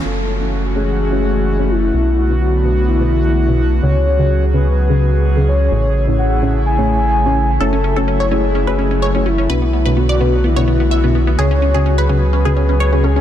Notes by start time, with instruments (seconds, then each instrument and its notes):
0.05 analog synth bass F#1, analog synth pad E3 A3 C#4 F#4, synth stab A3 C#4 E4 F#4 C#5, soft synth lead A4
0.41 synth stab A3 C#4 E4 F#4 C#5
0.75 synth stab A3 C#4 E4 F#4 C#5, soft synth lead G#4
1.12 synth stab A3 C#4 E4 F#4 C#5
1.59 synth stab A3 C#4 E4 F#4 C#5
1.70 soft synth lead E4
1.94 analog synth bass B1, synth stab B2 A3 B3 D4 F#4 B4, analog synth pad D3 B3 F#4
2.30 synth stab B2 A3 B3 D4 F#4 B4
2.41 soft synth lead F#4
2.65 synth stab B2 A3 B3 D4 F#4 B4
2.88 soft synth lead E4
3.00 synth stab B2 A3 B3 D4 F#4 B4
3.48 synth stab B2 A3 B3 D4 F#4 B4
3.83 analog synth bass C#2, analog synth pad C#3 F#3 G#4, synth stab C#3 C#4 F#4 G#4, soft synth lead C#5
4.19 synth stab C#3 C#4 F#4 G#4
4.53 synth stab C#3 C#4 F#4 G#4, soft synth lead B4
4.89 synth stab C#3 C#4 F#4 G#4
5.37 synth stab C#3 C#4 F#4 G#4
5.48 soft synth lead C#5
5.71 analog synth bass A1, synth stab A2 A3 C#4 E4 G#4 C#5, analog synth pad A3 E4
6.08 synth stab A2 A3 C#4 E4 G#4 C#5
6.19 soft synth lead F#5
6.42 synth stab A2 A3 C#4 E4 G#4 C#5
6.66 soft synth lead G#5
6.78 synth stab A2 A3 C#4 E4 G#4 C#5
7.26 synth stab A2 A3 C#4 E4 G#4 C#5
7.60 analog synth bass F#1, analog synth pad F#3 A3 E4, synth stab A3 C#4 E4 F#4 C#5, synth pluck A4, soft synth lead A4
7.73 synth pluck C#4
7.84 synth pluck C#4
7.96 synth stab A3 C#4 E4 F#4 C#5, synth pluck A4
8.08 synth pluck C#4
8.20 synth pluck C#5
8.31 synth stab A3 C#4 E4 F#4 C#5, synth pluck C#4, soft synth lead G#4
8.55 synth pluck C#4
8.67 synth stab A3 C#4 E4 F#4 C#5, synth pluck B4
8.79 synth pluck C#4
8.91 synth pluck C#4
9.02 synth pluck C#5
9.15 synth stab A3 C#4 E4 F#4 C#5, synth pluck C#4
9.26 synth pluck C#4, soft synth lead E4
9.38 synth pluck C#4
9.49 analog synth bass B1, synth stab B2 A3 B3 D4 F#4 B4, analog synth pad D3 B3 F#4, synth pluck B4
9.62 synth pluck B3
9.73 synth pluck B3
9.86 synth stab B2 A3 B3 D4 F#4 B4, synth pluck B4
9.97 synth pluck B3, soft synth lead F#4
10.09 synth pluck D5
10.20 synth stab B2 A3 B3 D4 F#4 B4, synth pluck B3
10.44 synth pluck B3, soft synth lead E4
10.56 synth stab B2 A3 B3 D4 F#4 B4, synth pluck C#5
10.68 synth pluck B3
10.80 synth pluck B3
10.91 synth pluck E5
11.04 synth stab B2 A3 B3 D4 F#4 B4, synth pluck B3
11.15 synth pluck B3
11.27 synth pluck B3
11.38 analog synth bass C#2, synth stab C#3 C#4 F#4 G#4, analog synth pad C#3 F#3 G#4, synth pluck G#4, soft synth lead C#5
11.51 synth pluck C#4
11.62 synth pluck C#4
11.74 synth stab C#3 C#4 F#4 G#4, synth pluck G#4
11.86 synth pluck C#4
11.98 synth pluck B4
12.09 synth stab C#3 C#4 F#4 G#4, synth pluck C#4, soft synth lead B4
12.33 synth pluck C#4
12.45 synth stab C#3 C#4 F#4 G#4, synth pluck G#4
12.57 synth pluck C#4
12.69 synth pluck C#4
12.80 synth pluck C#5
12.93 synth stab C#3 C#4 F#4 G#4, synth pluck C#4
13.04 synth pluck C#4, soft synth lead G#4
13.16 synth pluck C#4